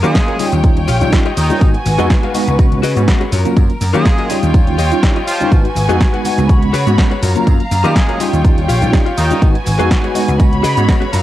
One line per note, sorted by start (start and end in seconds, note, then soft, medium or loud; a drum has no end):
0.00 0.13 D#3 loud
0.00 0.37 F#3 medium
0.00 0.45 G#3 medium
0.00 0.37 A#3 medium
0.00 0.37 C#4 medium
0.00 0.15 F4 loud
0.00 0.15 F#4 loud
0.00 0.45 G#4 medium
0.00 0.39 A#4 medium
0.00 0.15 A#4 medium
0.00 closed hi-hat soft
0.04 0.15 C#5 loud
0.04 0.37 F5 loud
0.04 tambourine soft
0.04 shaker soft
0.15 kick loud
0.15 snare loud
0.15 closed hi-hat medium
0.15 tambourine medium
0.15 shaker soft
0.28 0.38 F4 medium
0.28 0.39 F#4 medium
0.28 0.40 A#4 medium
0.28 0.39 C#5 loud
0.28 closed hi-hat soft
0.28 tambourine soft
0.39 0.60 G3 medium
0.39 0.60 C#4 medium
0.39 0.60 D#4 medium
0.39 0.79 F4 loud
0.39 0.60 F4 medium
0.39 0.79 G4 medium
0.39 1.61 C#5 medium
0.39 0.79 C#5 medium
0.39 0.80 D#5 loud
0.39 1.61 G5 medium
0.39 open hi-hat loud
0.39 tambourine medium
0.39 high conga medium
0.39 shaker medium
0.52 0.85 D#2 medium
0.52 closed hi-hat soft
0.52 tambourine soft
0.52 shaker soft
0.63 0.84 G3 medium
0.63 0.84 C#4 medium
0.63 0.85 D#4 medium
0.63 0.85 F4 loud
0.63 kick loud
0.63 closed hi-hat medium
0.63 tambourine medium
0.63 shaker soft
0.77 closed hi-hat soft
0.77 tambourine soft
0.77 high conga loud
0.88 0.99 A#1 loud
0.88 1.07 F4 loud
0.88 1.07 G4 medium
0.88 1.07 C#5 loud
0.88 1.07 F5 loud
0.88 open hi-hat loud
0.88 tambourine loud
0.88 shaker medium
1.01 1.11 A#1 loud
1.01 1.10 G3 medium
1.01 1.10 C#4 medium
1.01 1.10 D#4 medium
1.01 1.10 F4 medium
1.01 closed hi-hat soft
1.01 tambourine soft
1.01 shaker soft
1.12 1.26 G3 loud
1.12 1.26 C#4 medium
1.12 1.26 D#4 medium
1.12 1.27 F4 loud
1.12 kick loud
1.12 snare loud
1.12 closed hi-hat medium
1.12 tambourine medium
1.12 high conga medium
1.12 shaker soft
1.25 1.50 F4 loud
1.25 1.50 G4 medium
1.25 1.50 C#5 medium
1.25 1.51 D#5 loud
1.25 closed hi-hat soft
1.25 tambourine soft
1.37 1.48 D#2 medium
1.37 1.67 D#3 medium
1.37 1.67 D#4 medium
1.37 open hi-hat loud
1.37 tambourine medium
1.37 shaker medium
1.50 1.59 G3 medium
1.50 1.59 C#4 medium
1.50 1.59 D#4 medium
1.50 1.59 F4 loud
1.50 closed hi-hat soft
1.50 tambourine soft
1.50 high conga loud
1.50 shaker soft
1.61 1.72 G#1 loud
1.61 1.75 G#3 medium
1.61 1.75 B3 medium
1.61 1.75 D#4 medium
1.61 1.75 F#4 medium
1.61 2.58 F#4 medium
1.61 3.31 B4 medium
1.61 2.58 G#5 medium
1.61 kick loud
1.61 closed hi-hat medium
1.61 tambourine soft
1.61 shaker soft
1.74 muted clean electric guitar stroke soft
1.74 closed hi-hat soft
1.74 tambourine soft
1.86 1.97 G#1 loud
1.86 open hi-hat loud
1.86 tambourine medium
1.86 high conga medium
1.86 low conga medium
1.86 shaker medium
1.98 2.08 F2 medium
1.98 2.32 G#3 medium
1.98 2.32 B3 medium
1.98 2.32 D#4 medium
1.98 2.10 F#4 loud
1.98 2.32 F#4 loud
1.98 2.10 G#4 loud
1.98 2.11 B4 loud
1.98 2.11 D#5 loud
1.98 closed hi-hat soft
1.98 tambourine soft
1.98 shaker soft
2.10 kick loud
2.10 snare loud
2.10 closed hi-hat medium
2.10 tambourine soft
2.10 shaker soft
2.23 2.41 F#4 medium
2.23 2.41 G#4 medium
2.23 2.41 B4 medium
2.23 2.42 F5 loud
2.23 closed hi-hat soft
2.23 tambourine soft
2.34 2.55 G#3 medium
2.34 2.55 B3 medium
2.34 2.55 D#4 medium
2.34 2.55 F#4 medium
2.34 open hi-hat loud
2.34 tambourine medium
2.34 high conga medium
2.34 shaker medium
2.47 2.80 C#2 medium
2.47 closed hi-hat soft
2.47 tambourine soft
2.47 shaker soft
2.58 2.79 G#3 medium
2.58 2.80 B3 medium
2.58 2.80 C#4 medium
2.58 3.32 C#4 medium
2.58 2.80 F#4 loud
2.58 muted clean electric guitar stroke soft
2.58 kick loud
2.58 closed hi-hat medium
2.58 tambourine medium
2.58 shaker soft
2.72 closed hi-hat soft
2.72 tambourine soft
2.72 high conga loud
2.72 low conga medium
2.83 2.94 C#3 loud
2.83 3.02 F#4 loud
2.83 3.02 G#4 medium
2.83 3.02 B4 loud
2.83 3.03 D#5 loud
2.83 open hi-hat loud
2.83 tambourine medium
2.83 shaker medium
2.96 3.06 G#2 loud
2.96 3.05 G#3 medium
2.96 3.05 B3 medium
2.96 3.05 C#4 medium
2.96 3.05 F#4 medium
2.96 closed hi-hat soft
2.96 tambourine soft
2.96 shaker soft
3.07 3.21 G#3 loud
3.07 3.21 B3 medium
3.07 3.21 C#4 medium
3.07 3.22 F#4 loud
3.07 kick loud
3.07 snare loud
3.07 closed hi-hat medium
3.07 tambourine soft
3.07 high conga medium
3.07 shaker soft
3.20 3.31 F#4 loud
3.20 3.32 G#4 loud
3.20 3.33 B4 medium
3.20 3.32 C#5 loud
3.20 closed hi-hat soft
3.20 tambourine soft
3.32 3.43 F#2 medium
3.32 3.62 F4 loud
3.32 3.62 F#4 medium
3.32 4.29 A#4 medium
3.32 3.62 A#4 medium
3.32 3.62 C#5 loud
3.32 open hi-hat loud
3.32 tambourine medium
3.32 low conga medium
3.32 shaker medium
3.45 3.54 F#3 medium
3.45 3.54 A#3 medium
3.45 3.54 C#4 medium
3.45 3.54 F4 loud
3.45 closed hi-hat soft
3.45 tambourine soft
3.45 high conga loud
3.45 shaker soft
3.56 3.68 F#2 loud
3.56 3.70 F#3 medium
3.56 3.70 A#3 medium
3.56 3.70 C#4 medium
3.56 3.70 F4 medium
3.56 kick loud
3.56 closed hi-hat medium
3.56 tambourine soft
3.56 shaker soft
3.69 muted clean electric guitar stroke soft
3.69 closed hi-hat soft
3.69 tambourine soft
3.81 3.92 F#2 loud
3.81 open hi-hat loud
3.81 tambourine loud
3.81 high conga medium
3.81 shaker medium
3.94 4.04 D#3 loud
3.94 4.27 F#3 loud
3.94 4.35 G#3 medium
3.94 4.27 A#3 medium
3.94 4.27 C#4 medium
3.94 4.05 F4 loud
3.94 4.05 F#4 loud
3.94 4.35 G#4 loud
3.94 4.06 A#4 loud
3.94 4.06 C#5 loud
3.94 4.27 F5 loud
3.94 closed hi-hat soft
3.94 tambourine soft
3.94 shaker soft
4.05 kick loud
4.05 snare loud
4.05 closed hi-hat medium
4.05 tambourine medium
4.05 shaker soft
4.18 4.28 F4 medium
4.18 4.29 F#4 medium
4.18 4.30 A#4 medium
4.18 4.29 D#5 loud
4.18 closed hi-hat soft
4.18 tambourine soft
4.29 4.50 G3 medium
4.29 4.51 C#4 medium
4.29 4.51 D#4 medium
4.29 4.69 F4 medium
4.29 5.51 F4 medium
4.29 4.51 F4 medium
4.29 4.70 G4 medium
4.29 5.51 C#5 medium
4.29 4.70 C#5 medium
4.29 4.70 D#5 loud
4.29 5.51 G5 medium
4.29 open hi-hat loud
4.29 tambourine medium
4.29 high conga medium
4.29 shaker medium
4.43 4.76 D#2 medium
4.43 closed hi-hat soft
4.43 tambourine soft
4.43 shaker soft
4.54 4.75 G3 medium
4.54 4.75 C#4 medium
4.54 4.75 D#4 medium
4.54 4.75 F4 loud
4.54 kick loud
4.54 closed hi-hat medium
4.54 tambourine medium
4.54 shaker soft
4.67 closed hi-hat soft
4.67 tambourine soft
4.67 high conga loud
4.78 4.89 D#2 loud
4.78 4.97 F4 loud
4.78 4.97 G4 loud
4.78 4.97 C#5 loud
4.78 4.98 D#5 loud
4.78 open hi-hat loud
4.78 tambourine medium
4.78 shaker medium
4.92 5.00 G3 medium
4.92 5.00 C#4 medium
4.92 5.01 D#4 medium
4.92 5.01 F4 medium
4.92 closed hi-hat soft
4.92 tambourine soft
4.92 shaker soft
5.03 5.16 G3 loud
5.03 5.17 C#4 medium
5.03 5.17 D#4 medium
5.03 5.17 F4 loud
5.03 kick loud
5.03 snare loud
5.03 closed hi-hat medium
5.03 tambourine soft
5.03 high conga medium
5.03 shaker soft
5.15 5.40 F4 loud
5.15 5.40 G4 medium
5.15 5.41 C#5 medium
5.15 5.41 D#5 loud
5.15 closed hi-hat soft
5.15 tambourine soft
5.27 5.57 F3 medium
5.27 5.57 F4 medium
5.27 open hi-hat loud
5.27 tambourine medium
5.27 shaker medium
5.40 5.49 G3 medium
5.40 5.49 C#4 medium
5.40 5.49 D#4 medium
5.40 5.49 F4 loud
5.40 closed hi-hat soft
5.40 tambourine soft
5.40 high conga medium
5.40 shaker soft
5.52 5.63 G#1 loud
5.52 5.65 G#3 medium
5.52 5.66 B3 medium
5.52 5.66 D#4 medium
5.52 6.48 F#4 medium
5.52 5.66 F#4 medium
5.52 6.49 B4 medium
5.52 6.49 G#5 medium
5.52 kick loud
5.52 closed hi-hat medium
5.52 tambourine medium
5.52 shaker soft
5.64 muted clean electric guitar stroke soft
5.64 closed hi-hat soft
5.64 tambourine soft
5.75 5.87 G#1 loud
5.75 open hi-hat loud
5.75 tambourine medium
5.75 high conga loud
5.75 low conga medium
5.75 shaker medium
5.89 5.99 F2 loud
5.89 6.22 G#3 loud
5.89 6.22 B3 medium
5.89 6.23 D#4 medium
5.89 6.00 F#4 loud
5.89 6.23 F#4 loud
5.89 6.01 G#4 loud
5.89 6.01 B4 loud
5.89 6.01 D#5 loud
5.89 closed hi-hat soft
5.89 tambourine soft
5.89 shaker soft
6.00 kick loud
6.00 snare loud
6.00 closed hi-hat medium
6.00 tambourine soft
6.00 shaker soft
6.13 6.31 F#4 medium
6.13 6.31 G#4 medium
6.13 6.32 B4 medium
6.13 6.32 F#5 medium
6.13 closed hi-hat soft
6.13 tambourine soft
6.25 6.46 G#3 medium
6.25 6.46 B3 medium
6.25 6.46 D#4 medium
6.25 6.46 F#4 medium
6.25 open hi-hat loud
6.25 tambourine medium
6.25 high conga medium
6.25 shaker medium
6.37 6.71 C#2 medium
6.37 closed hi-hat soft
6.37 tambourine soft
6.37 shaker soft
6.49 6.70 G#3 medium
6.49 6.70 B3 medium
6.49 6.70 C#4 medium
6.49 7.22 F#4 medium
6.49 6.70 F#4 loud
6.49 7.22 C#5 medium
6.49 7.22 B5 medium
6.49 muted clean electric guitar stroke soft
6.49 kick loud
6.49 closed hi-hat medium
6.49 tambourine soft
6.49 shaker soft
6.62 closed hi-hat soft
6.62 tambourine soft
6.62 high conga medium
6.62 low conga medium
6.73 6.85 C#3 loud
6.73 6.92 F#4 loud
6.73 6.92 G#4 medium
6.73 6.93 B4 loud
6.73 6.93 C#5 loud
6.73 open hi-hat loud
6.73 tambourine medium
6.73 shaker medium
6.87 6.96 G#2 loud
6.87 6.95 G#3 medium
6.87 6.95 B3 medium
6.87 6.96 C#4 medium
6.87 6.96 F#4 medium
6.87 closed hi-hat soft
6.87 tambourine soft
6.87 shaker soft
6.98 7.12 G#3 loud
6.98 7.12 B3 medium
6.98 7.12 C#4 medium
6.98 7.12 F#4 loud
6.98 kick loud
6.98 snare loud
6.98 closed hi-hat medium
6.98 tambourine medium
6.98 high conga medium
6.98 shaker soft
7.11 7.21 F#4 loud
7.11 7.22 G#4 medium
7.11 7.23 B4 medium
7.11 7.22 C#5 loud
7.11 closed hi-hat soft
7.11 tambourine soft
7.22 7.33 F#2 medium
7.22 7.52 F4 loud
7.22 7.52 F#4 medium
7.22 7.52 A#4 medium
7.22 7.53 C#5 medium
7.22 8.19 F5 medium
7.22 8.19 A#5 medium
7.22 open hi-hat loud
7.22 tambourine medium
7.22 low conga medium
7.22 shaker medium
7.35 7.44 F#3 medium
7.35 7.44 A#3 medium
7.35 7.44 C#4 medium
7.35 7.45 F4 loud
7.35 closed hi-hat soft
7.35 tambourine soft
7.35 high conga medium
7.35 shaker soft
7.47 7.58 F#2 loud
7.47 7.60 F#3 medium
7.47 kick loud
7.47 closed hi-hat medium
7.47 tambourine medium
7.47 shaker soft
7.60 muted clean electric guitar stroke soft
7.60 closed hi-hat soft
7.60 tambourine soft
7.71 7.82 F#2 loud
7.71 open hi-hat loud
7.71 tambourine medium
7.71 high conga loud
7.71 shaker medium
7.84 7.94 D#3 loud
7.84 8.17 F#3 loud
7.84 8.25 G#3 medium
7.84 8.17 A#3 medium
7.84 8.18 C#4 medium
7.84 7.96 F4 loud
7.84 7.96 F#4 medium
7.84 8.25 G#4 medium
7.84 7.96 A#4 loud
7.84 7.96 D#5 loud
7.84 8.18 F5 loud
7.84 closed hi-hat soft
7.84 tambourine soft
7.84 shaker soft
7.96 kick loud
7.96 snare loud
7.96 closed hi-hat medium
7.96 tambourine soft
7.96 shaker soft
8.08 8.18 F4 medium
8.08 8.19 F#4 medium
8.08 8.20 A#4 medium
8.08 8.19 C#5 loud
8.08 closed hi-hat soft
8.08 tambourine soft
8.19 8.41 G3 medium
8.19 8.41 C#4 medium
8.19 8.41 D#4 medium
8.19 8.60 F4 loud
8.19 9.41 F4 medium
8.19 8.41 F4 medium
8.19 8.60 G4 medium
8.19 9.41 C#5 medium
8.19 8.60 C#5 medium
8.19 8.60 D#5 loud
8.19 9.41 G5 medium
8.19 open hi-hat loud
8.19 tambourine medium
8.19 high conga medium
8.19 shaker medium
8.33 8.66 D#2 medium
8.33 closed hi-hat soft
8.33 tambourine soft
8.33 shaker soft
8.44 8.65 G3 medium
8.44 8.65 C#4 medium
8.44 8.65 D#4 medium
8.44 8.65 F4 loud
8.44 kick loud
8.44 closed hi-hat medium
8.44 tambourine soft
8.44 shaker soft
8.57 closed hi-hat soft
8.57 tambourine soft
8.57 high conga medium
8.68 8.80 A#1 loud
8.68 8.87 F4 loud
8.68 8.88 G4 loud
8.68 8.88 C#5 medium
8.68 8.88 F5 loud
8.68 open hi-hat loud
8.68 tambourine loud
8.68 shaker medium
8.81 8.91 A#1 loud
8.81 8.90 G3 medium
8.81 8.90 C#4 medium
8.81 8.91 D#4 medium
8.81 8.91 F4 medium
8.81 closed hi-hat soft
8.81 tambourine soft
8.81 shaker soft
8.93 9.07 G3 loud
8.93 9.07 C#4 medium
8.93 9.07 D#4 medium
8.93 9.07 F4 loud
8.93 kick loud
8.93 snare loud
8.93 closed hi-hat medium
8.93 tambourine medium
8.93 high conga medium
8.93 shaker soft
9.06 9.31 F4 medium
9.06 9.31 G4 medium
9.06 9.31 C#5 medium
9.06 9.31 F5 medium
9.06 closed hi-hat soft
9.06 tambourine soft
9.17 9.29 D#2 medium
9.17 9.47 D#3 medium
9.17 9.47 D#4 loud
9.17 open hi-hat loud
9.17 tambourine medium
9.17 shaker medium
9.31 9.39 G3 medium
9.31 9.39 C#4 medium
9.31 9.40 D#4 medium
9.31 9.40 F4 loud
9.31 closed hi-hat soft
9.31 tambourine soft
9.31 high conga medium
9.31 shaker soft
9.42 9.53 G#1 loud
9.42 9.55 B3 medium
9.42 9.56 D#4 medium
9.42 10.39 F#4 medium
9.42 9.56 F#4 medium
9.42 10.39 B4 medium
9.42 10.39 G#5 medium
9.42 kick loud
9.42 closed hi-hat medium
9.42 tambourine soft
9.42 shaker soft
9.54 muted clean electric guitar stroke soft
9.54 closed hi-hat soft
9.54 tambourine soft
9.66 9.77 G#1 loud
9.66 open hi-hat loud
9.66 tambourine medium
9.66 high conga medium
9.66 low conga medium
9.66 shaker medium
9.79 9.89 F2 loud
9.79 10.12 G#3 loud
9.79 10.13 B3 medium
9.79 10.13 D#4 medium
9.79 9.91 F#4 loud
9.79 10.13 F#4 loud
9.79 9.91 G#4 loud
9.79 9.91 B4 loud
9.79 9.91 D#5 loud
9.79 closed hi-hat soft
9.79 tambourine soft
9.79 shaker soft
9.91 kick loud
9.91 snare loud
9.91 closed hi-hat medium
9.91 tambourine medium
9.91 shaker soft
10.03 10.21 F#4 loud
10.03 10.22 G#4 medium
10.03 10.22 B4 medium
10.03 10.22 C#5 loud
10.03 closed hi-hat soft
10.03 tambourine soft
10.15 10.36 G#3 medium
10.15 10.36 B3 medium
10.15 10.36 D#4 medium
10.15 10.36 F#4 medium
10.15 open hi-hat loud
10.15 tambourine medium
10.15 high conga medium
10.15 shaker medium
10.28 10.61 C#2 medium
10.28 closed hi-hat soft
10.28 tambourine soft
10.28 shaker soft
10.39 10.60 G#3 medium
10.39 10.60 B3 medium
10.39 10.61 C#4 medium
10.39 10.61 F#4 loud
10.39 11.12 C#5 medium
10.39 11.12 B5 medium
10.39 muted clean electric guitar stroke soft
10.39 kick loud
10.39 closed hi-hat medium
10.39 tambourine medium
10.39 shaker soft
10.53 closed hi-hat soft
10.53 tambourine soft
10.53 high conga medium
10.53 low conga medium
10.63 10.75 C#3 loud
10.63 10.82 F#4 loud
10.63 10.83 G#4 loud
10.63 10.83 B4 loud
10.63 10.83 D#5 loud
10.63 open hi-hat loud
10.63 tambourine medium
10.63 shaker medium
10.77 10.87 G#2 loud
10.77 10.86 G#3 medium
10.77 10.86 B3 medium
10.77 10.86 C#4 medium
10.77 10.86 F#4 loud
10.77 closed hi-hat soft
10.77 tambourine soft
10.77 shaker soft
10.88 11.02 G#3 loud
10.88 11.02 B3 medium
10.88 11.02 C#4 medium
10.88 11.02 F#4 loud
10.88 kick loud
10.88 snare loud
10.88 closed hi-hat medium
10.88 tambourine medium
10.88 high conga medium
10.88 shaker soft
11.01 11.11 F#4 loud
11.01 11.12 G#4 medium
11.01 11.13 B4 medium
11.01 11.12 C#5 loud
11.01 closed hi-hat soft
11.01 tambourine soft
11.12 11.22 F#2 medium
11.12 11.22 F4 loud
11.12 11.22 F#4 medium
11.12 11.22 A#4 medium
11.12 11.22 C#5 loud
11.12 11.22 F5 medium
11.12 11.22 A#5 medium
11.12 open hi-hat loud
11.12 tambourine loud
11.12 low conga medium
11.12 shaker medium